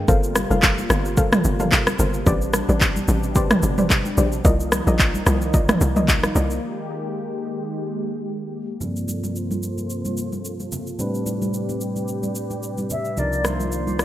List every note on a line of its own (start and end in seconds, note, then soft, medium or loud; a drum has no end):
0.08 0.45 G1 loud
0.08 4.41 C3 medium
0.08 2.24 G3 medium
0.08 2.24 A#3 medium
0.08 2.24 F4 medium
0.08 0.47 A4 loud
0.08 0.47 A#4 medium
0.08 0.47 C5 medium
0.08 0.47 F5 loud
0.08 kick loud
0.08 low conga medium
0.08 shaker medium
0.24 shaker medium
0.35 cross-stick loud
0.35 high conga medium
0.35 shaker loud
0.50 0.85 F1 medium
0.50 0.63 A4 medium
0.50 0.63 A#4 medium
0.50 0.63 C5 medium
0.50 0.63 F5 medium
0.50 high conga medium
0.50 shaker medium
0.62 kick medium
0.62 clap medium
0.62 shaker medium
0.78 high conga medium
0.78 shaker soft
0.90 1.38 G1 loud
0.90 cross-stick loud
0.90 shaker medium
1.05 shaker medium
1.17 1.32 A4 loud
1.17 1.32 A#4 medium
1.17 1.33 C5 medium
1.17 1.33 F5 loud
1.17 kick loud
1.17 low conga medium
1.17 shaker medium
1.32 cross-stick loud
1.32 mid tom medium
1.32 high conga medium
1.32 shaker medium
1.44 1.92 G1 medium
1.44 shaker medium
1.60 1.96 A4 medium
1.60 1.96 A#4 medium
1.60 1.96 C5 medium
1.60 1.97 F5 medium
1.60 mid tom medium
1.60 high conga medium
1.60 shaker medium
1.72 kick loud
1.72 clap loud
1.72 shaker medium
1.87 cross-stick loud
1.87 high conga medium
1.87 shaker medium
1.99 2.23 G1 loud
1.99 2.24 A4 medium
1.99 2.25 A#4 medium
1.99 2.25 C5 medium
1.99 2.25 F5 medium
1.99 low conga medium
1.99 shaker loud
2.14 shaker medium
2.26 2.63 A1 loud
2.26 4.43 B2 medium
2.26 4.42 G3 medium
2.26 4.43 D4 medium
2.26 2.65 G4 loud
2.26 2.65 B4 medium
2.26 2.65 C5 medium
2.26 2.65 D5 loud
2.26 kick loud
2.26 low conga medium
2.26 shaker medium
2.42 shaker medium
2.53 cross-stick loud
2.53 high conga medium
2.53 shaker loud
2.69 3.03 A1 medium
2.69 2.81 G4 medium
2.69 2.81 B4 medium
2.69 2.81 C5 medium
2.69 2.81 D5 medium
2.69 high conga medium
2.69 shaker medium
2.81 kick loud
2.81 clap medium
2.81 shaker medium
2.96 high conga medium
2.96 shaker medium
3.08 3.56 A1 loud
3.08 shaker medium
3.23 shaker medium
3.35 3.51 G4 medium
3.35 3.51 B4 medium
3.35 3.51 C5 medium
3.35 3.51 D5 loud
3.35 kick loud
3.35 low conga medium
3.35 shaker medium
3.50 cross-stick loud
3.50 mid tom loud
3.50 high conga medium
3.50 shaker medium
3.63 4.10 G1 medium
3.63 shaker medium
3.78 4.14 G4 medium
3.78 4.15 B4 medium
3.78 4.15 C5 medium
3.78 4.15 D5 medium
3.78 mid tom medium
3.78 high conga medium
3.78 shaker medium
3.90 kick medium
3.90 clap loud
3.90 shaker medium
4.05 high conga medium
4.05 shaker medium
4.17 4.41 A#1 loud
4.17 4.43 G4 medium
4.17 4.43 B4 medium
4.17 4.43 C5 medium
4.17 4.43 D5 medium
4.17 low conga medium
4.17 shaker loud
4.32 shaker soft
4.44 4.82 C2 loud
4.44 6.61 D#3 medium
4.44 6.61 F3 medium
4.44 8.77 A#3 medium
4.44 6.61 D#4 medium
4.44 4.83 F4 loud
4.44 4.83 A#4 medium
4.44 4.83 D5 medium
4.44 4.84 D#5 loud
4.44 kick loud
4.44 low conga medium
4.44 shaker medium
4.60 shaker medium
4.72 cross-stick loud
4.72 high conga medium
4.72 shaker medium
4.87 5.21 A#1 medium
4.87 4.99 F4 medium
4.87 4.99 A#4 medium
4.87 4.99 D5 medium
4.87 4.99 D#5 medium
4.87 high conga medium
4.87 shaker medium
4.99 kick loud
4.99 clap medium
4.99 shaker medium
5.14 high conga medium
5.14 shaker soft
5.26 5.74 C2 loud
5.26 cross-stick medium
5.26 shaker medium
5.42 shaker medium
5.54 5.69 F4 loud
5.54 5.69 A#4 medium
5.54 5.69 D5 medium
5.54 5.69 D#5 loud
5.54 kick loud
5.54 low conga medium
5.54 shaker medium
5.69 cross-stick loud
5.69 mid tom medium
5.69 high conga medium
5.69 shaker medium
5.81 6.29 C2 medium
5.81 shaker medium
5.96 6.33 F4 medium
5.96 6.33 A#4 medium
5.96 6.33 D5 medium
5.96 6.33 D#5 medium
5.96 mid tom medium
5.96 high conga medium
5.96 shaker medium
6.08 kick medium
6.08 clap loud
6.08 shaker medium
6.23 cross-stick medium
6.23 high conga medium
6.23 shaker medium
6.35 6.59 C2 medium
6.35 6.61 F4 medium
6.35 6.61 A#4 medium
6.35 6.61 D5 medium
6.35 6.61 D#5 medium
6.35 low conga medium
6.35 shaker loud
6.50 shaker soft
6.63 8.79 D#3 medium
6.63 8.79 G#3 medium
6.63 8.79 G4 medium
8.81 10.95 G2 medium
8.81 10.97 G2 medium
8.81 10.97 C3 medium
8.81 10.95 F3 medium
8.81 10.97 A#3 medium
8.81 10.96 A#3 medium
8.81 10.96 C4 medium
8.81 10.97 F4 medium
8.81 10.97 A4 medium
8.81 10.96 A4 medium
8.81 9.38 D5 loud
8.81 low conga medium
8.81 shaker medium
8.96 shaker soft
9.08 high conga medium
9.08 shaker medium
9.23 high conga medium
9.23 shaker medium
9.36 10.73 C5 loud
9.36 shaker medium
9.51 high conga medium
9.51 shaker soft
9.63 shaker medium
9.78 high conga medium
9.78 shaker soft
9.90 shaker medium
10.05 high conga medium
10.05 shaker medium
10.17 shaker medium
10.32 high conga medium
10.32 shaker soft
10.45 shaker medium
10.60 high conga medium
10.60 shaker soft
10.72 low conga medium
10.72 shaker medium
10.87 shaker soft
10.99 13.13 A2 medium
10.99 13.15 C3 medium
10.99 13.13 G3 medium
10.99 13.14 C4 medium
10.99 13.14 D4 medium
10.99 13.15 G4 medium
10.99 13.15 B4 medium
10.99 13.14 B4 medium
10.99 14.05 D5 medium
10.99 low conga medium
10.99 shaker medium
11.14 shaker soft
11.26 high conga medium
11.26 shaker medium
11.42 high conga medium
11.42 shaker medium
11.54 shaker medium
11.69 high conga medium
11.69 shaker soft
11.81 shaker medium
11.96 high conga soft
11.96 shaker soft
12.08 shaker medium
12.23 high conga medium
12.23 shaker medium
12.35 shaker medium
12.51 high conga medium
12.51 shaker soft
12.63 shaker medium
12.78 high conga medium
12.78 shaker soft
12.90 13.20 E5 medium
12.90 low conga medium
12.90 shaker medium
13.05 shaker soft
13.17 14.05 C2 medium
13.17 14.05 D#3 medium
13.17 14.05 F3 medium
13.17 14.05 A#3 medium
13.17 14.05 D4 medium
13.17 14.05 D#4 medium
13.17 14.05 F4 medium
13.17 14.05 A#4 medium
13.17 13.47 D5 medium
13.17 low conga medium
13.17 shaker medium
13.33 shaker medium
13.45 14.02 C5 medium
13.45 cross-stick medium
13.45 high conga medium
13.45 shaker medium
13.60 high conga medium
13.60 shaker medium
13.72 shaker medium
13.87 high conga medium
13.87 shaker soft
13.99 14.05 D5 loud
13.99 cross-stick medium
13.99 shaker medium